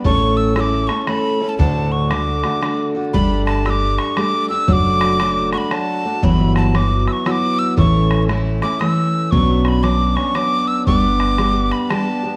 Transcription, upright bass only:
X:1
M:3/4
L:1/8
Q:"Swing" 1/4=116
K:D
V:1 name="Upright bass" clef=bass
A,,,4 z2 | D,,4 z2 | G,,,4 z2 | F,,,4 z2 |
G,,,4 z2 | A,,,4 z2 | B,,,4 z2 | G,,,4 z2 |]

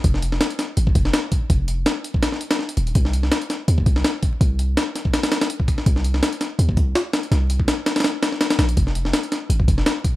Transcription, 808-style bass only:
X:1
M:4/4
L:1/8
Q:"Swing 16ths" 1/4=165
K:Fm
V:1 name="808-style bass" clef=bass
F,,,2 z2 A,,, F,,, z2 | F,,,2 z4 z E,,, | C,,2 z2 E,, C,, z2 | C,,2 z6 |
C,,2 z2 E,, C,, z2 | C,,2 z4 z B,,, | F,,,2 z2 A,,, F,,, z2 |]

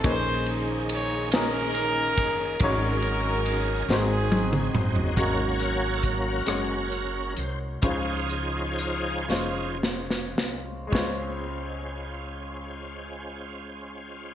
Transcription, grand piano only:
X:1
M:6/8
L:1/8
Q:3/8=45
K:Db
V:1 name="Grand piano"
[B,DEA_c=c]2 z [B,DEAB]2 z | [A,DEGd]2 z [A,CEGc]2 z | [A,DGB]2 z [A,DGd]2 z | [A,DFc]2 z [A,DFc]2 z |
[A,DFc]6 |]
V:2 name="Grand piano" clef=bass
B,,3 z3 | A,,3 A,,3 | A,,3 z3 | D,3 z3 |
D,,6 |]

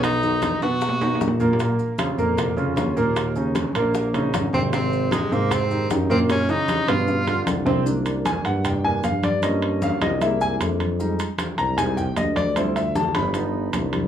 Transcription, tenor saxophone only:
X:1
M:4/4
L:1/8
Q:1/4=153
K:Bbdor
V:1 name="Tenor saxophone"
^D3 ^F4 z | z8 | z6 z C | C2 A, B, C2 z C |
D E2 F3 z2 | [K:Cm] z8 | z8 | z8 |
z8 |]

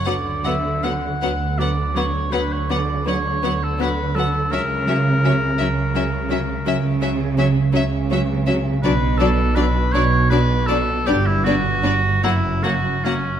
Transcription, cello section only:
X:1
M:12/8
L:1/8
Q:3/8=54
K:Bm
V:1 name="Cello section" clef=bass
D,3 D,3 D,3 D,3 | C,3 C,3 C,3 C,3 | B,,3 B,,3 G,,3 F,,3 |]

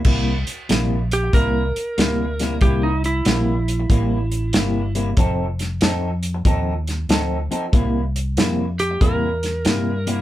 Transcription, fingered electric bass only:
X:1
M:4/4
L:1/8
Q:"Swing" 1/4=94
K:Cmix
V:1 name="Fingered electric bass" clef=bass
C,, z B,,,2 C,, z D,,2 | C,,2 B,,,2 A,,,2 G,,,2 | F,,,2 F,,2 _E,,2 D,, z | C,,2 F,,2 E,,2 G,,2 |]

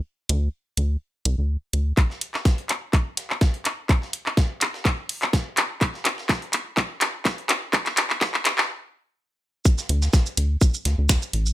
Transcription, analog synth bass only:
X:1
M:4/4
L:1/16
Q:"Swing 16ths" 1/4=125
K:Cdor
V:1 name="Analog synth bass" clef=bass
z2 D,,2 z2 D,,2 z2 C,, D,,2 z D,,2 | z16 | z16 | z16 |
z16 | z2 D,,2 z2 D,,2 z2 D,, D,,2 z A,,,2 |]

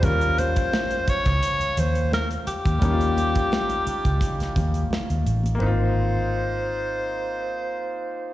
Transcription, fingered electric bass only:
X:1
M:4/4
L:1/16
Q:"Swing 16ths" 1/4=86
K:Ebmix
V:1 name="Fingered electric bass" clef=bass
E,,4 z3 D,, z2 E,,4 z E,, | E,,4 z3 D,, z2 E,,2 z E,, =A,,,2 | A,,,16 |]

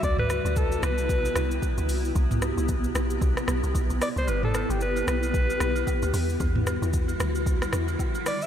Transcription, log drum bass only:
X:1
M:4/4
L:1/16
Q:"Swing 16ths" 1/4=113
K:Em
V:1 name="Log drum bass" clef=bass
D,,3 D,,3 C,,4 C,,2 z D,, C,,2 | C,,3 C,,3 B,,,2 C,, z B,,, C,, B,,, B,,, z C,, | G,,,3 G,,,3 B,,,4 B,,,2 z D,, E,,2 | E,,3 E,,3 D,,4 E,,2 z4 |]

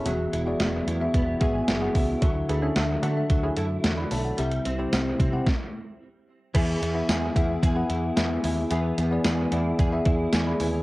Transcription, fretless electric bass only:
X:1
M:4/4
L:1/8
Q:1/4=111
K:Emix
V:1 name="Fretless electric bass" clef=bass
E,,, E,,, E,,, E,, E,,, G,,, F,,, C,, | D,, D,, D,, D, D,, F,, E,, B,,, | =C,, C,, C,, =C, z4 | E,, E,, E,, E,, E,, E,, E,, ^D,, |
E,, E,, E,, E,, E,, E,, E,, ^D,, |]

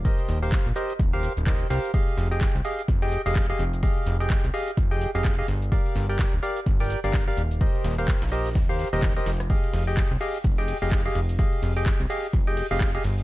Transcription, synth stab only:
X:1
M:4/4
L:1/16
Q:"Swing 16ths" 1/4=127
K:Fdor
V:1 name="Synth stab"
[GBce]3 [GBcf]2 z [GBce] z2 [GBcf]2 z [GBce]2 [GBcf]2 | [GAef]3 [GAeg]2 z [GAef] z2 [GAeg]2 [GAef]2 [GAef] z2 | [GAef]3 [GAeg]2 z [GAef] z2 [GAeg]2 [GAef]2 [GAef] z2 | [GBdf]3 [GBdg]2 z [GBdf] z2 [GBdg]2 [GBdf]2 [GBdf] z2 |
[GBce]3 [GBcf]2 z [GBce] z2 [GBcf]2 [GBce]2 [GBce] z2 | [GAef]3 [GAeg]2 z [GAef] z2 [GAeg]2 [GAef]2 [GAef] z2 | [GAef]3 [GAeg]2 z [GAef] z2 [GAeg]2 [GAef]2 [GAef] z2 |]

